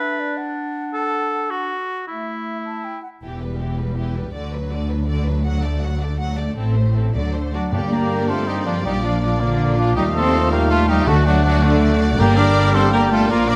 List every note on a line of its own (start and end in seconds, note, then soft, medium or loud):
0.00 1.75 D4 medium
0.00 0.37 B4 medium
0.00 0.21 E5 medium
0.20 0.39 D5 medium
0.37 1.79 F#5 medium
0.94 1.52 A4 medium
1.50 2.07 F#4 medium
2.07 3.00 A3 soft
2.07 3.01 E4 medium
2.07 2.58 E5 soft
2.65 2.86 A5 soft
2.84 3.02 G5 soft
3.03 3.09 F#5 soft
3.22 4.31 E1 soft
3.22 4.30 E2 soft
3.22 3.41 E3 soft
3.22 3.40 E4 soft
3.22 3.40 G4 soft
3.42 3.60 G3 soft
3.42 3.60 G4 soft
3.42 3.60 B4 soft
3.60 3.79 E3 soft
3.60 3.78 E4 soft
3.60 3.79 G4 soft
3.79 3.98 G3 soft
3.79 3.97 G4 soft
3.79 3.97 B4 soft
3.96 4.15 E3 soft
3.96 4.14 E4 soft
3.96 4.15 G4 soft
4.16 4.35 G3 soft
4.16 4.35 G4 soft
4.16 4.35 B4 soft
4.34 6.58 D2 soft
4.34 4.52 D3 soft
4.34 4.52 F#4 soft
4.34 4.52 D5 soft
4.52 4.72 F#3 soft
4.52 4.71 D4 soft
4.52 4.71 B4 soft
4.71 4.90 D3 soft
4.71 4.90 F#4 soft
4.71 4.90 D5 soft
4.90 5.09 F#3 soft
4.90 5.09 D4 soft
4.90 5.09 B4 soft
5.08 5.26 D3 soft
5.08 5.26 F#4 soft
5.08 5.25 D5 soft
5.26 5.45 F#3 soft
5.26 5.45 D4 soft
5.26 5.45 B4 soft
5.45 5.63 F#3 medium
5.45 5.63 F#4 soft
5.45 5.63 F#5 soft
5.64 5.83 A3 soft
5.64 5.83 A4 soft
5.64 5.83 D5 soft
5.81 6.02 F#3 soft
5.81 6.02 F#4 soft
5.81 6.01 F#5 soft
6.01 6.20 A3 soft
6.01 6.21 A4 soft
6.01 6.20 D5 soft
6.20 6.37 F#3 soft
6.20 6.38 F#4 soft
6.20 6.37 F#5 soft
6.38 6.58 A3 soft
6.38 6.58 A4 soft
6.38 6.57 D5 soft
6.57 7.14 A1 medium
6.57 7.14 A2 medium
6.57 6.75 C4 soft
6.57 6.76 E4 soft
6.57 6.75 A4 soft
6.76 6.96 A3 soft
6.76 6.97 C4 soft
6.76 6.95 C5 soft
6.95 7.15 C4 soft
6.95 7.16 E4 soft
6.95 7.15 A4 soft
7.15 7.54 D2 soft
7.15 7.54 D3 soft
7.15 7.33 F#3 soft
7.15 7.34 F#4 soft
7.15 7.33 D5 soft
7.35 7.54 A3 soft
7.35 7.54 A4 soft
7.35 7.54 C5 soft
7.54 7.73 F#3 soft
7.54 7.72 F#3 medium
7.54 7.72 D4 medium
7.54 7.62 F#4 medium
7.54 7.72 D5 soft
7.54 7.74 F#5 medium
7.72 8.25 G2 medium
7.72 8.81 G2 medium
7.72 8.81 D3 medium
7.72 8.81 G3 soft
7.72 7.92 G3 medium
7.72 9.93 A#3 medium
7.72 8.31 A#3 medium
7.72 7.81 D4 medium
7.72 9.93 D4 medium
7.72 8.81 G4 medium
7.72 7.91 G4 medium
7.72 9.93 D5 medium
7.72 8.25 D5 medium
7.72 7.91 G5 medium
7.91 8.29 A#3 medium
7.91 8.31 G4 medium
7.91 8.29 A#4 medium
7.91 8.28 A#5 medium
8.28 8.48 A3 medium
8.28 8.87 C4 medium
8.28 8.49 F4 medium
8.28 8.48 A4 medium
8.28 8.84 C5 medium
8.28 8.47 A5 medium
8.47 8.66 G3 medium
8.47 8.66 D#4 medium
8.47 8.56 G4 medium
8.47 8.68 G5 medium
8.66 8.85 F3 medium
8.66 8.75 D4 medium
8.66 8.85 F4 medium
8.66 8.84 F5 medium
8.84 9.97 A#1 medium
8.84 11.04 A#2 medium
8.84 11.03 F3 medium
8.84 9.03 G3 medium
8.84 9.39 A#3 medium
8.84 8.94 D#4 medium
8.84 11.08 F4 medium
8.84 9.04 G4 medium
8.84 9.97 D5 medium
8.84 8.91 G5 medium
9.04 9.21 F3 medium
9.04 9.21 D4 medium
9.04 9.20 F4 medium
9.04 9.22 F5 medium
9.21 9.30 F3 medium
9.21 9.42 D4 medium
9.21 9.40 F4 medium
9.21 9.42 F5 medium
9.39 9.77 D3 medium
9.39 9.95 A#3 medium
9.39 9.77 A#3 medium
9.39 9.77 D4 medium
9.39 9.77 D5 medium
9.77 9.97 F3 medium
9.77 9.96 D4 medium
9.77 9.96 F4 loud
9.77 9.96 F5 medium
9.96 11.08 D#2 medium
9.96 11.05 A#2 medium
9.96 10.04 G3 medium
9.96 11.06 G3 medium
9.96 12.14 A3 medium
9.96 11.05 D#4 medium
9.96 10.05 D#4 medium
9.96 10.14 G4 medium
9.96 10.53 D#5 medium
9.96 11.06 F5 medium
9.96 10.03 G5 medium
10.14 10.51 C4 medium
10.14 10.51 A4 medium
10.14 10.51 C5 loud
10.14 10.55 C6 medium
10.51 10.70 A#3 medium
10.51 10.70 G4 medium
10.51 10.70 A#4 medium
10.51 11.08 F5 medium
10.51 10.72 A#5 medium
10.69 10.89 A3 medium
10.69 10.88 F4 loud
10.69 10.77 A4 loud
10.69 10.90 A5 medium
10.88 11.08 G3 medium
10.88 11.09 D#4 medium
10.88 11.07 G4 loud
10.88 11.07 G5 loud
11.07 12.16 D2 loud
11.07 11.59 D3 medium
11.07 12.16 D3 medium
11.07 12.19 F#3 medium
11.07 12.18 A3 medium
11.07 11.26 A3 medium
11.07 12.19 A3 medium
11.07 12.16 D4 medium
11.07 11.26 F#4 medium
11.07 12.17 F#4 medium
11.07 11.26 A4 loud
11.07 13.29 D5 medium
11.07 12.21 F#5 medium
11.07 11.28 A5 medium
11.26 11.43 F#3 medium
11.26 11.44 D4 medium
11.26 11.44 F#4 loud
11.26 11.44 F#5 medium
11.45 11.63 F#3 loud
11.45 11.65 D4 medium
11.45 11.63 F#4 loud
11.45 11.51 F#5 medium
11.63 11.99 D3 medium
11.63 12.00 A3 medium
11.63 12.00 D4 loud
11.63 11.94 D5 medium
12.18 13.30 G1 medium
12.18 12.70 G2 loud
12.18 13.26 D3 medium
12.18 13.31 G3 medium
12.18 13.26 G3 medium
12.18 13.56 A#3 medium
12.18 12.36 A#3 loud
12.18 13.56 A#3 medium
12.18 13.56 D4 medium
12.18 12.39 G4 loud
12.18 13.30 G4 medium
12.18 12.36 A#4 loud
12.18 12.74 G5 medium
12.18 12.36 A#5 loud
12.37 12.74 D4 loud
12.37 12.76 A#4 loud
12.37 12.74 D5 loud
12.37 12.76 D6 loud
12.73 12.82 C4 loud
12.73 12.92 A4 loud
12.73 12.92 C5 loud
12.73 13.32 G5 medium
12.73 12.93 C6 loud
12.93 13.11 A#3 medium
12.93 13.11 G4 loud
12.93 13.00 A#4 loud
12.93 13.13 A#5 loud
13.11 13.29 A3 medium
13.11 13.30 F4 medium
13.11 13.30 A4 loud
13.11 13.29 A5 loud
13.28 13.56 A#1 loud
13.28 13.56 A#2 medium
13.28 13.56 F3 medium
13.28 13.48 A#3 loud
13.28 13.56 A#3 medium
13.28 13.50 F4 loud
13.28 13.56 F4 medium
13.28 13.48 A#4 loud
13.28 13.56 D5 medium
13.28 13.47 A#5 loud
13.48 13.56 D4 loud
13.48 13.56 A#4 loud
13.48 13.56 D5 loud
13.48 13.56 D6 loud